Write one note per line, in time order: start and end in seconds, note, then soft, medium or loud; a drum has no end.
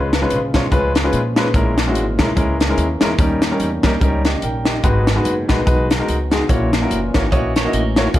0.00 0.24 C#2 medium
0.00 0.50 C#3 medium
0.00 1.52 F3 medium
0.00 3.15 G#3 medium
0.00 4.80 C#4 medium
0.00 1.51 B4 medium
0.13 snare medium
0.13 closed hi-hat medium
0.21 0.37 G#3 medium
0.21 0.37 C#4 medium
0.21 0.38 F4 medium
0.21 0.38 B4 medium
0.30 0.51 A#1 medium
0.30 closed hi-hat medium
0.54 0.69 B1 medium
0.54 0.64 G#3 medium
0.54 0.64 C#4 medium
0.54 0.64 F4 medium
0.54 0.64 C#5 medium
0.54 kick medium
0.54 snare medium
0.54 closed hi-hat medium
0.71 1.07 C#2 medium
0.71 0.90 G#3 medium
0.71 0.91 C#4 medium
0.71 0.91 F4 medium
0.71 0.91 B4 medium
0.71 kick medium
0.71 closed hi-hat medium
0.95 snare loud
0.95 closed hi-hat medium
1.04 1.20 G#3 medium
1.04 1.20 C#4 medium
1.04 1.20 F4 medium
1.04 1.21 B4 medium
1.13 1.56 A#2 medium
1.13 closed hi-hat medium
1.36 1.46 G#3 medium
1.36 1.46 C#4 medium
1.36 1.46 F4 medium
1.36 1.46 B4 medium
1.36 snare loud
1.36 closed hi-hat medium
1.54 1.95 A#1 medium
1.54 2.16 A#2 medium
1.54 3.18 E3 medium
1.54 1.73 G#3 medium
1.54 4.81 A#3 medium
1.54 1.74 C#4 medium
1.54 1.74 E4 medium
1.54 1.74 A#4 medium
1.54 kick loud
1.54 closed hi-hat medium
1.78 snare medium
1.78 closed hi-hat medium
1.87 2.02 G#3 medium
1.87 2.03 C#4 medium
1.87 2.03 E4 medium
1.87 2.03 F#4 medium
1.95 2.16 G#1 medium
1.95 closed hi-hat medium
2.19 2.34 B1 medium
2.19 2.28 G#3 medium
2.19 2.29 C#4 medium
2.19 2.29 E4 medium
2.19 2.29 A#4 medium
2.19 kick medium
2.19 snare loud
2.19 closed hi-hat medium
2.36 2.72 C#2 medium
2.36 2.55 G#3 medium
2.36 2.55 C#4 medium
2.36 2.56 E4 medium
2.36 2.56 A#4 medium
2.36 kick medium
2.36 closed hi-hat medium
2.61 snare loud
2.61 closed hi-hat medium
2.69 2.85 G#3 medium
2.69 2.85 C#4 medium
2.69 2.85 E4 medium
2.69 2.85 A#4 medium
2.78 2.98 D#2 medium
2.78 closed hi-hat medium
3.01 3.16 E2 medium
3.01 3.11 G#3 medium
3.01 3.11 C#4 medium
3.01 3.11 E4 medium
3.01 3.11 A#4 medium
3.01 snare loud
3.01 closed hi-hat medium
3.18 3.54 D#2 medium
3.18 6.46 D#3 medium
3.18 3.80 D#3 medium
3.18 3.38 G3 medium
3.18 4.83 G3 medium
3.18 3.38 C#4 medium
3.18 3.38 D#4 medium
3.18 3.39 A#4 medium
3.18 kick loud
3.18 closed hi-hat medium
3.42 snare medium
3.42 closed hi-hat medium
3.51 3.67 G3 medium
3.51 3.67 C#4 medium
3.51 3.68 D#4 medium
3.51 3.68 A#4 medium
3.60 3.80 E2 medium
3.60 closed hi-hat medium
3.83 3.99 D#2 medium
3.83 3.93 G3 medium
3.83 3.93 C#4 medium
3.83 3.93 D#4 medium
3.83 3.94 A#4 medium
3.83 kick medium
3.83 snare loud
3.83 closed hi-hat medium
4.00 4.37 C#2 medium
4.00 4.20 G3 medium
4.00 4.20 C#4 medium
4.00 4.21 D#4 medium
4.00 4.21 A#4 medium
4.00 kick medium
4.00 closed hi-hat medium
4.25 4.42 G4 medium
4.25 4.42 D#5 medium
4.25 snare loud
4.25 closed hi-hat medium
4.42 4.78 A#1 medium
4.42 4.66 A#4 medium
4.42 4.66 G5 medium
4.42 closed hi-hat medium
4.65 5.06 G4 soft
4.65 5.06 D#5 medium
4.65 snare loud
4.65 closed hi-hat medium
4.83 5.19 G#1 loud
4.83 5.45 G#2 medium
4.83 8.11 F#3 medium
4.83 6.47 G#3 medium
4.83 5.03 G#3 medium
4.83 6.47 B3 medium
4.83 5.03 D#4 medium
4.83 5.03 F#4 medium
4.83 5.03 B4 medium
4.83 kick medium
4.83 closed hi-hat medium
5.07 snare loud
5.07 closed hi-hat medium
5.15 5.32 G#3 medium
5.15 5.32 D#4 medium
5.15 5.32 F#4 medium
5.15 5.33 B4 medium
5.25 5.46 F#1 medium
5.25 closed hi-hat medium
5.48 5.64 A#1 medium
5.48 5.58 G#3 medium
5.48 5.58 D#4 medium
5.48 5.58 F#4 medium
5.48 5.59 B4 medium
5.48 kick medium
5.48 snare medium
5.48 closed hi-hat medium
5.65 6.02 B1 medium
5.65 5.85 G#3 medium
5.65 5.86 D#4 medium
5.65 5.86 F#4 medium
5.65 5.86 B4 medium
5.65 kick medium
5.65 closed hi-hat medium
5.91 snare medium
5.91 closed hi-hat medium
5.99 6.15 G#3 medium
5.99 6.15 D#4 medium
5.99 6.15 F#4 medium
5.99 6.16 A#4 medium
6.08 6.44 C#2 medium
6.08 closed hi-hat medium
6.31 6.41 G#3 medium
6.31 6.41 D#4 medium
6.31 6.42 F#4 medium
6.31 6.41 G#4 medium
6.31 snare loud
6.31 closed hi-hat medium
6.48 6.85 A#1 medium
6.48 7.11 A#2 medium
6.48 8.13 E3 medium
6.48 6.68 A#3 medium
6.48 8.19 A#3 medium
6.48 8.13 C#4 medium
6.48 6.68 E4 medium
6.48 6.68 F#4 medium
6.48 6.69 C#5 medium
6.48 kick loud
6.48 closed hi-hat medium
6.73 snare medium
6.73 closed hi-hat medium
6.82 6.98 A#3 medium
6.82 6.98 E4 medium
6.82 6.98 F#4 medium
6.82 6.98 A#4 medium
6.91 7.11 F#1 medium
6.91 closed hi-hat medium
7.14 7.30 G#1 medium
7.14 7.24 A#3 medium
7.14 7.24 E4 medium
7.14 7.24 F#4 medium
7.14 7.24 C#5 medium
7.14 kick medium
7.14 snare loud
7.14 closed hi-hat medium
7.32 7.67 A#1 medium
7.32 7.51 A#3 medium
7.32 7.51 E4 medium
7.32 7.52 F#4 medium
7.32 7.55 F#4 medium
7.32 7.52 C#5 medium
7.32 7.55 D#5 medium
7.32 kick medium
7.32 closed hi-hat medium
7.56 7.73 E4 medium
7.56 7.73 C#5 medium
7.56 snare loud
7.56 closed hi-hat medium
7.64 7.80 A#3 medium
7.64 7.81 E4 medium
7.64 7.81 F#4 medium
7.64 7.81 D#5 medium
7.73 8.09 A1 medium
7.73 8.13 C#4 medium
7.73 8.13 A#4 medium
7.73 closed hi-hat medium
7.96 8.06 A#3 medium
7.96 8.06 E4 medium
7.96 8.07 F#4 medium
7.96 8.07 C#5 medium
7.96 snare loud
7.96 closed hi-hat medium
8.14 8.19 A#1 medium
8.14 8.19 A#2 medium
8.14 8.19 F3 medium
8.14 8.19 G#3 medium
8.14 8.19 A#3 medium
8.14 8.19 D4 medium
8.14 8.19 F4 medium
8.14 8.19 G#4 medium
8.14 8.19 D5 medium
8.14 kick loud
8.14 closed hi-hat medium